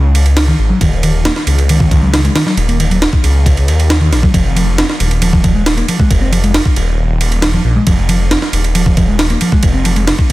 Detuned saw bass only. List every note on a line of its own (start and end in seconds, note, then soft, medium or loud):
0.00 0.52 C#2 loud
0.59 0.73 G#1 medium
0.81 1.29 D#1 loud
1.47 2.29 C#2 loud
2.57 3.06 D#1 loud
3.23 3.69 C#2 loud
3.68 4.14 D#2 medium
4.12 4.26 A#1 medium
4.34 4.82 F1 loud
5.00 5.82 D#1 loud
6.11 6.59 F1 loud
6.76 7.58 D#1 loud
7.65 7.78 A#1 medium
7.87 8.35 F1 loud
8.53 9.34 D#1 loud
9.63 10.12 F1 loud